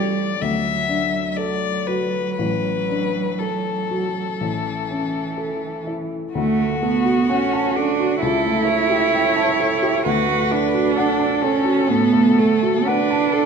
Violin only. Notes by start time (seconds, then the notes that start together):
Already playing: D5
0.42 E5
1.31 E5
1.36 D5
1.87 B4
2.36 B4
3.39 A4
6.35 F#4
8.22 A4
8.68 C#5
10.07 B4
10.97 A4
12.88 B4
13.32 A4